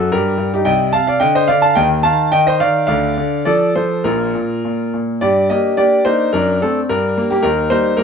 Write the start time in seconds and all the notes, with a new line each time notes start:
Already playing: F#2 F#4 A4
0.12 G2 G4 A#4
0.38 G2
0.54 D#4 G4
0.65 C2 C3 D#5 G5
0.93 C3 F5 A5
1.07 D5 F5
1.20 D3 D#5 G5
1.35 C5 D#5
1.48 D3 D5 F5
1.62 F5 A5
1.76 D#2 D#3 D#5 G5
2.03 D#3 F5 A5
2.32 D#3 D#5 G5
2.47 C5 D#5
2.60 D#3 D5 F5
2.87 D2 D3 D5 F5
3.17 D3
3.45 F3 A4 D5
3.76 F3 A4 C5
4.04 A#1 A#2 F4 A#4
4.35 A#2
4.65 A#2
4.94 A#2
5.21 G2 G4 D5
5.50 A#3 D4 G4 D#5
5.77 A#3 D4 G4 D5
6.05 A#3 D4 D#4 C5
6.33 F#2 D4 A#4
6.62 A3 C4 D4 A4
6.89 G2 D4 A#4
7.17 G3 A#3
7.31 A#3 G4
7.43 D#2 D#4 A#4
7.70 G3 A#3 D#4 C5
7.97 G3 A#3 D#4 A#4